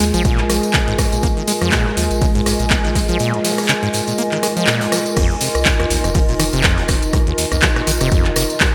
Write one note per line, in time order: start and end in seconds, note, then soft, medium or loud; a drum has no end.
0.00 0.12 D#2 medium
0.00 5.18 G#3 medium
0.00 0.05 G#3 loud
0.00 8.75 F4 medium
0.00 5.18 G#4 medium
0.00 8.75 A#4 medium
0.00 8.75 D#5 medium
0.00 8.75 G#5 medium
0.00 closed hi-hat medium
0.00 open hi-hat medium
0.00 tambourine medium
0.14 0.59 A#1 medium
0.14 0.23 F3 loud
0.14 closed hi-hat soft
0.14 tambourine medium
0.25 0.40 A#2 loud
0.25 kick loud
0.25 closed hi-hat medium
0.25 tambourine soft
0.38 0.45 G#2 medium
0.38 clap soft
0.38 closed hi-hat soft
0.49 0.57 F3 medium
0.49 cross-stick medium
0.49 closed hi-hat medium
0.49 open hi-hat loud
0.49 tambourine medium
0.63 closed hi-hat soft
0.63 tambourine medium
0.73 0.79 C#3 loud
0.73 kick loud
0.73 snare loud
0.73 clap loud
0.73 closed hi-hat medium
0.73 tambourine soft
0.88 0.97 G#1 medium
0.88 0.94 G#2 loud
0.88 closed hi-hat soft
0.98 1.06 G#2 medium
0.98 kick medium
0.98 cross-stick medium
0.98 closed hi-hat medium
0.98 open hi-hat medium
0.98 tambourine medium
1.12 1.21 A#1 medium
1.12 1.18 A#2 medium
1.12 closed hi-hat medium
1.12 tambourine medium
1.23 1.34 A#1 loud
1.23 1.28 A#3 loud
1.23 kick loud
1.23 closed hi-hat medium
1.23 tambourine soft
1.37 1.43 D#3 medium
1.37 closed hi-hat soft
1.47 1.52 G#3 loud
1.47 closed hi-hat medium
1.47 open hi-hat loud
1.47 tambourine medium
1.61 1.71 F2 medium
1.61 1.70 F3 loud
1.61 cross-stick medium
1.61 closed hi-hat soft
1.61 closed hi-hat medium
1.61 tambourine soft
1.72 1.88 A#2 loud
1.72 kick loud
1.72 snare loud
1.72 clap loud
1.72 closed hi-hat medium
1.72 tambourine soft
1.86 1.92 G#2 medium
1.97 2.08 D#2 medium
1.97 2.05 F3 medium
1.97 closed hi-hat medium
1.97 open hi-hat medium
1.97 tambourine medium
2.11 2.56 A#1 medium
2.11 closed hi-hat medium
2.11 tambourine soft
2.21 2.26 C#3 loud
2.21 kick loud
2.21 closed hi-hat medium
2.21 open hi-hat medium
2.21 tambourine soft
2.35 2.41 G#2 loud
2.35 snare soft
2.35 closed hi-hat soft
2.46 2.54 G#2 medium
2.46 cross-stick medium
2.46 snare loud
2.46 closed hi-hat medium
2.46 open hi-hat loud
2.46 tambourine medium
2.59 3.05 A#1 loud
2.59 2.66 A#2 medium
2.59 closed hi-hat medium
2.59 tambourine soft
2.70 2.75 A#3 loud
2.70 kick loud
2.70 snare loud
2.70 clap loud
2.70 closed hi-hat medium
2.70 tambourine soft
2.85 2.91 D#3 medium
2.85 snare soft
2.85 closed hi-hat soft
2.95 3.00 G#3 loud
2.95 kick medium
2.95 closed hi-hat medium
2.95 open hi-hat medium
2.95 tambourine medium
3.08 3.18 A#1 medium
3.08 3.18 F3 loud
3.08 closed hi-hat medium
3.08 tambourine soft
3.19 3.35 A#2 loud
3.19 closed hi-hat medium
3.19 tambourine soft
3.34 3.40 G#2 medium
3.34 closed hi-hat soft
3.44 3.52 F3 medium
3.44 snare medium
3.44 closed hi-hat medium
3.44 open hi-hat loud
3.44 tambourine medium
3.51 snare medium
3.51 closed hi-hat medium
3.57 cross-stick medium
3.57 snare medium
3.57 closed hi-hat medium
3.57 tambourine medium
3.63 snare medium
3.63 closed hi-hat medium
3.68 3.74 C#3 loud
3.68 snare loud
3.68 clap loud
3.68 closed hi-hat medium
3.68 tambourine soft
3.83 3.89 G#2 loud
3.83 closed hi-hat soft
3.93 4.01 G#2 medium
3.93 closed hi-hat medium
3.93 open hi-hat medium
3.93 tambourine medium
4.07 4.13 A#2 medium
4.07 closed hi-hat medium
4.07 tambourine soft
4.18 4.23 A#3 loud
4.18 closed hi-hat medium
4.18 tambourine soft
4.32 4.38 D#3 medium
4.32 clap soft
4.32 closed hi-hat soft
4.43 4.47 G#3 loud
4.43 cross-stick medium
4.43 closed hi-hat medium
4.43 open hi-hat loud
4.43 tambourine medium
4.57 4.66 F3 loud
4.57 closed hi-hat medium
4.57 tambourine soft
4.67 4.83 A#2 loud
4.67 snare loud
4.67 clap loud
4.67 closed hi-hat medium
4.67 tambourine soft
4.81 4.87 G#2 medium
4.81 snare loud
4.81 closed hi-hat medium
4.81 closed hi-hat soft
4.92 5.00 F3 medium
4.92 cross-stick medium
4.92 snare loud
4.92 closed hi-hat medium
4.92 open hi-hat medium
4.92 tambourine medium
5.06 closed hi-hat medium
5.06 tambourine medium
5.16 5.28 F1 loud
5.16 5.32 F2 loud
5.16 8.75 D#4 medium
5.16 kick loud
5.16 cross-stick medium
5.16 closed hi-hat medium
5.16 crash loud
5.16 tambourine soft
5.30 5.36 D#2 medium
5.30 closed hi-hat soft
5.41 5.49 C3 medium
5.41 closed hi-hat medium
5.41 open hi-hat loud
5.41 tambourine loud
5.55 5.64 C2 medium
5.55 cross-stick medium
5.55 closed hi-hat soft
5.55 closed hi-hat medium
5.55 tambourine medium
5.65 5.70 G#2 loud
5.65 kick loud
5.65 snare loud
5.65 clap loud
5.65 closed hi-hat medium
5.65 tambourine soft
5.80 5.86 D#2 loud
5.80 cross-stick medium
5.80 closed hi-hat soft
5.90 6.02 A#1 medium
5.90 5.98 D#2 medium
5.90 closed hi-hat medium
5.90 open hi-hat loud
5.90 tambourine medium
6.04 6.49 F1 medium
6.04 6.10 F2 medium
6.04 cross-stick soft
6.04 closed hi-hat medium
6.04 tambourine medium
6.14 6.20 F3 loud
6.14 kick loud
6.14 closed hi-hat medium
6.14 open hi-hat medium
6.14 tambourine soft
6.29 6.35 A#2 medium
6.29 snare soft
6.29 closed hi-hat soft
6.39 6.44 D#3 loud
6.39 cross-stick medium
6.39 closed hi-hat medium
6.39 open hi-hat loud
6.39 tambourine loud
6.53 6.99 F1 loud
6.53 6.62 C3 loud
6.53 closed hi-hat medium
6.53 tambourine medium
6.63 6.79 F2 loud
6.63 kick loud
6.63 cross-stick soft
6.63 snare loud
6.63 clap loud
6.63 closed hi-hat medium
6.63 tambourine soft
6.78 6.84 D#2 medium
6.78 snare soft
6.78 closed hi-hat soft
6.88 6.96 C3 medium
6.88 kick medium
6.88 cross-stick medium
6.88 closed hi-hat medium
6.88 open hi-hat medium
6.88 tambourine medium
7.02 7.11 F1 medium
7.02 closed hi-hat medium
7.02 tambourine medium
7.13 7.18 G#2 loud
7.13 kick loud
7.13 cross-stick medium
7.13 closed hi-hat medium
7.13 tambourine soft
7.27 7.33 D#2 loud
7.27 closed hi-hat soft
7.38 7.45 D#2 medium
7.38 closed hi-hat medium
7.38 open hi-hat loud
7.38 tambourine loud
7.52 7.61 C2 medium
7.52 7.58 F2 medium
7.52 cross-stick medium
7.52 closed hi-hat medium
7.52 tambourine medium
7.62 7.67 F3 loud
7.62 kick loud
7.62 snare loud
7.62 clap loud
7.62 closed hi-hat medium
7.62 tambourine soft
7.76 7.82 A#2 medium
7.76 cross-stick medium
7.76 closed hi-hat soft
7.87 7.98 A#1 medium
7.87 7.92 D#3 loud
7.87 closed hi-hat medium
7.87 open hi-hat loud
7.87 tambourine loud
8.00 8.46 F1 medium
8.00 8.10 C3 loud
8.00 cross-stick soft
8.00 closed hi-hat medium
8.00 tambourine medium
8.11 8.27 F2 loud
8.11 kick loud
8.11 closed hi-hat medium
8.11 tambourine soft
8.25 8.31 D#2 medium
8.25 clap soft
8.25 closed hi-hat soft
8.36 8.44 C3 medium
8.36 cross-stick medium
8.36 closed hi-hat medium
8.36 open hi-hat loud
8.36 tambourine loud
8.50 closed hi-hat medium
8.50 tambourine medium
8.60 8.65 G#2 loud
8.60 kick loud
8.60 cross-stick soft
8.60 snare loud
8.60 clap loud
8.60 closed hi-hat medium
8.60 tambourine soft